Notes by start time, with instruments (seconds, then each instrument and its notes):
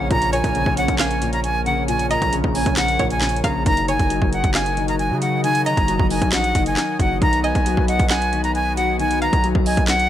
Already playing: grand piano A#2 C#3 C#4, analog synth pad A#3 A#4 C#5
0.11 808-style bass A#1, grand piano A#2, flute A#5, kick, closed hi-hat
0.22 closed hi-hat
0.33 grand piano A#2, synth pluck C#5, flute G#5, closed hi-hat
0.44 808-style bass A#1, kick, closed hi-hat
0.55 grand piano C#3, closed hi-hat
0.66 808-style bass A#1, kick
0.77 grand piano C#4, flute F#5, closed hi-hat
0.88 808-style bass A#1, kick, closed hi-hat
0.99 synth pluck F5, flute G#5, snare, clap, closed hi-hat
1.11 closed hi-hat
1.22 grand piano A#2, closed hi-hat
1.33 flute A#5, closed hi-hat
1.44 flute G#5, closed hi-hat
1.66 grand piano C#3, flute F#5, closed hi-hat
1.88 grand piano A#2, flute G#5, closed hi-hat
1.99 closed hi-hat
2.10 grand piano A#2, synth pluck D#5, flute A#5, closed hi-hat
2.22 808-style bass A#1, kick, closed hi-hat
2.33 grand piano C#3, closed hi-hat
2.44 808-style bass A#1, kick
2.55 grand piano C#4, flute G#5, open hi-hat
2.66 808-style bass A#1, kick, closed hi-hat
2.77 flute F#5, snare, clap, closed hi-hat
2.88 closed hi-hat
2.99 808-style bass A#1, grand piano A#2, synth pluck C#5, kick, closed hi-hat
3.10 flute G#5, closed hi-hat
3.21 snare, clap, closed hi-hat
3.29 closed hi-hat
3.36 closed hi-hat
3.43 808-style bass A#1, grand piano C#3, synth pluck F5, flute A#5, kick, closed hi-hat
3.66 808-style bass F#1, grand piano D#3, analog synth pad F#3 F#4 D#5, flute A#5, kick, closed hi-hat
3.77 closed hi-hat
3.88 grand piano D#3, synth pluck C#5, flute G#5, closed hi-hat
3.99 808-style bass F#1, kick, closed hi-hat
4.10 grand piano F#3, closed hi-hat
4.22 808-style bass F#1, kick
4.33 grand piano D#4, flute F#5, closed hi-hat
4.44 808-style bass F#1, kick, closed hi-hat
4.54 synth pluck F5, flute G#5, snare, clap, closed hi-hat
4.66 closed hi-hat
4.77 grand piano D#3, closed hi-hat
4.88 flute A#5, closed hi-hat
4.99 flute G#5, closed hi-hat
5.11 808-style bass C#3
5.21 grand piano F#3, flute F#5, closed hi-hat
5.44 grand piano D#3, flute G#5, closed hi-hat
5.55 closed hi-hat
5.65 grand piano D#3, synth pluck D#5, flute A#5, closed hi-hat
5.77 808-style bass F#1, kick, closed hi-hat
5.88 grand piano F#3, closed hi-hat
5.99 808-style bass F#1, kick
6.10 grand piano D#4, flute G#5, open hi-hat
6.22 808-style bass A#1, kick, closed hi-hat
6.32 flute F#5, snare, clap, closed hi-hat
6.44 closed hi-hat
6.55 808-style bass F#1, grand piano D#3, kick, closed hi-hat
6.66 flute G#5, closed hi-hat
6.77 snare, clap, closed hi-hat
6.99 808-style bass F#1, grand piano F#3, flute F#5, kick, closed hi-hat
7.22 808-style bass B1, grand piano D#3, analog synth pad B3 F#4 B4, flute A#5, kick, closed hi-hat
7.33 closed hi-hat
7.44 grand piano D#3, synth pluck D#5, flute G#5, closed hi-hat
7.55 808-style bass B1, kick, closed hi-hat
7.66 grand piano F#3, closed hi-hat
7.77 808-style bass B1, kick
7.88 grand piano D#5, flute F#5, closed hi-hat
7.99 808-style bass B1, kick, closed hi-hat
8.10 synth pluck F#5, flute G#5, snare, clap, closed hi-hat
8.22 closed hi-hat
8.33 grand piano D#3, closed hi-hat
8.44 flute A#5, closed hi-hat
8.55 flute G#5, closed hi-hat
8.77 grand piano F#3, flute F#5, closed hi-hat
8.99 grand piano D#3, flute G#5, closed hi-hat
9.11 closed hi-hat
9.22 grand piano D#3, synth pluck F5, flute A#5, closed hi-hat
9.33 808-style bass B1, kick, closed hi-hat
9.44 grand piano F#3, closed hi-hat
9.55 808-style bass B1, kick
9.66 grand piano D#5, flute G#5, open hi-hat
9.77 808-style bass B1, kick, closed hi-hat
9.88 flute F#5, snare, clap, closed hi-hat
9.99 closed hi-hat